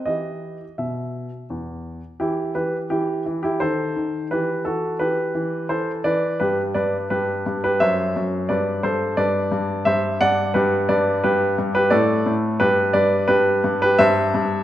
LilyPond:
<<
  \new Staff \with { instrumentName = "Grand piano" } { \time 3/4 \key e \minor \tempo 4 = 86 dis''4 e''4 r4 | <e' g'>8 <g' b'>8 <e' g'>8. <e' g'>16 <a' c''>4 | <g' b'>8 <fis' a'>8 <g' b'>4 <a' c''>8 <b' d''>8 | <g' b'>8 <b' d''>8 <g' b'>8. <g' b'>16 <c'' e''>4 |
<b' d''>8 <a' c''>8 <b' d''>4 <c'' e''>8 <d'' fis''>8 | \key g \major <g' b'>8 <b' d''>8 <g' b'>8. <g' b'>16 <a' d''>4 | <g' b'>8 <b' d''>8 <g' b'>8. <g' b'>16 <c'' e''>4 | }
  \new Staff \with { instrumentName = "Grand piano" } { \clef bass \time 3/4 \key e \minor <e e' g'>4 b,4 e,4 | e8 e8 e8 e8 ees8 ees8 | e8 e8 e8 e8 e8 e8 | g,8 g,8 g,8 g,8 fis,8 fis,8 |
g,8 g,8 g,8 g,8 g,8 g,8 | \key g \major g,8 g,8 g,8 g,8 a,8 a,8 | g,8 g,8 g,8 g,8 g,8 g,8 | }
>>